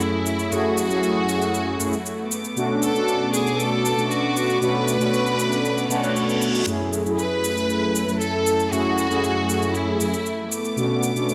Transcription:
Already playing: analog polysynth F#2 A3 C#4 E4 G#4, string section F#3 A3 E4
0.01 violin section E4, cabasa
0.26 cabasa
0.39 cabasa
0.51 analog polysynth F#2 A3 C#4 E4 G#4, violin section F#4, cabasa
0.78 cabasa
0.89 analog polysynth F#2 A3 C#4 E4 G#4, cabasa
1.03 cabasa
1.29 cabasa
1.42 cabasa
1.54 cabasa
1.79 analog polysynth F#2 A3 C#4 E4 G#4, cabasa
1.93 cabasa
2.06 cabasa
2.31 string section B3 D6, cabasa
2.44 cabasa
2.56 analog polysynth B2 A3 C#4 D4 F#4, cabasa
2.82 violin section A4, cabasa
2.94 analog polysynth B2 A3 C#4 D4 F#4, cabasa
3.08 cabasa
3.34 violin section G#4, cabasa
3.47 cabasa
3.60 violin section A4, cabasa
3.85 cabasa
3.96 analog polysynth B2 A3 C#4 D4 F#4, cabasa
4.11 violin section F#4, cabasa
4.37 cabasa
4.50 cabasa
4.61 analog polysynth B2 A3 C#4 D4 F#4, violin section B4, cabasa
4.88 cabasa
4.99 analog polysynth B2 A3 C#4 D4 F#4, cabasa
5.14 cabasa
5.27 cabasa
5.39 cabasa
5.52 cabasa
5.64 reverse cymbal, cabasa
5.78 cabasa
5.88 analog polysynth B2 A3 C#4 D4 F#4, cabasa
6.04 cabasa
6.16 cabasa
6.29 cabasa
6.42 cabasa
6.55 cabasa
6.66 analog polysynth F#2 A3 C#4 E4 G#4, string section F#3 A3 E4, cabasa
6.93 cabasa
7.04 analog polysynth F#2 A3 C#4 E4 G#4, cabasa
7.18 violin section B4, cabasa
7.44 cabasa
7.57 cabasa
7.70 cabasa
7.96 cabasa
8.06 analog polysynth F#2 A3 C#4 E4 A4, cabasa
8.20 violin section A4, cabasa
8.47 cabasa
8.60 cabasa
8.71 analog polysynth F#2 A3 C#4 E4 G#4, violin section F#4, cabasa
8.98 cabasa
9.09 analog polysynth F#2 A3 C#4 E4 G#4, cabasa
9.24 cabasa
9.50 cabasa
9.62 cabasa
9.75 violin section E4, cabasa
9.99 analog polysynth F#2 A3 C#4 E4 G#4, cabasa
10.14 cabasa
10.26 cabasa
10.51 string section B3 D6, cabasa
10.65 cabasa
10.76 analog polysynth B2 A3 C#4 D4 F#4, cabasa
11.03 cabasa
11.14 analog polysynth B2 A3 C#4 D4 F#4, cabasa
11.29 cabasa

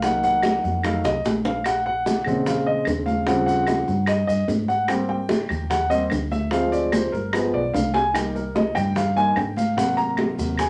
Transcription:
Already playing: fingered electric bass C2
0.02 grand piano D#3 F#3 A#3 F#5, high bongo, high conga, maracas
0.23 grand piano F#5, high bongo, high conga, maracas
0.43 high bongo, high conga, claves, maracas
0.64 fingered electric bass F2, high bongo, maracas
0.83 grand piano D#3 F#3 A3 F5, high bongo, high conga, claves, maracas
1.04 fingered electric bass C2, grand piano D#5, high bongo, high conga, maracas
1.25 fingered electric bass A#1, high bongo, high conga, maracas
1.45 grand piano F5, low bongo, high conga, maracas
1.64 grand piano F#5, high bongo, high conga, claves, maracas
1.86 grand piano F#5, high bongo, high conga
2.06 high bongo, high conga, maracas
2.25 fingered electric bass A#2, grand piano C#3 G#3 C4, high bongo, high conga, low conga, claves, maracas
2.46 grand piano F5, high bongo, high conga, low conga, maracas
2.66 grand piano D#5, high conga
2.85 fingered electric bass D#2, high bongo, low bongo, high conga, claves, maracas
3.06 grand piano F5, high bongo, high conga, maracas
3.26 grand piano C#3 F3 G3 C4 F#5, high bongo, high conga, maracas
3.46 grand piano F#5, high bongo, high conga, maracas
3.67 high bongo, high conga, claves, maracas
3.88 fingered electric bass G2, high bongo, maracas
4.06 grand piano D#5, high bongo, high conga, claves, maracas
4.27 fingered electric bass G2, grand piano D#5, high conga, maracas
4.48 fingered electric bass G#2, high bongo, low bongo, high conga, maracas
4.68 grand piano F#5, high bongo, high conga, maracas
4.88 grand piano G3 A#3 C4 G5, high bongo, high conga, claves, maracas
5.09 grand piano G5, high bongo, high conga
5.29 high bongo, high conga, maracas
5.49 fingered electric bass D#2, high bongo, high conga, low conga, claves, maracas
5.70 grand piano F#5, high bongo, high conga, low conga, maracas
5.89 grand piano G3 A#3 C4 D#5, high conga, maracas
6.10 fingered electric bass D2, high bongo, low bongo, high conga, claves, maracas
6.31 grand piano E5, high bongo, high conga, maracas
6.51 grand piano F3 G#3 C4 F5, high bongo, maracas
6.72 grand piano D5, high bongo, high conga, maracas
6.92 grand piano C5, high bongo, high conga, claves, maracas
7.12 fingered electric bass G1, grand piano A#4, high bongo, maracas
7.33 grand piano F3 G#3 B3 B4, high bongo, high conga, claves, maracas
7.54 fingered electric bass B1, grand piano D5, high conga
7.74 fingered electric bass C2, grand piano F5, high bongo, low bongo, high conga, maracas
7.94 grand piano G#5, high bongo, high conga, maracas
8.14 grand piano D#3 G3 A#3 G5, high bongo, high conga, claves, maracas
8.35 grand piano A#4, high bongo, high conga, maracas
8.55 grand piano D#5, high bongo, high conga, maracas
8.75 fingered electric bass G2, grand piano G5, high bongo, high conga, low conga, claves, maracas
8.95 grand piano F5, high bongo, high conga, low conga, maracas
9.16 grand piano D#3 G3 A#3 G#5, high conga, maracas
9.36 fingered electric bass G#2, grand piano G5, high bongo, low bongo, high conga, claves, maracas
9.56 grand piano F5, high bongo, high conga, maracas
9.76 grand piano C3 F#3 A#3 F#5, high bongo, high conga, maracas
9.97 grand piano A#5, high bongo, high conga, maracas
10.17 high bongo, high conga, claves, maracas
10.38 fingered electric bass D#2, grand piano C3 F#3 A#3, high bongo, high conga, maracas
10.58 grand piano G#5, high bongo, high conga, claves, maracas

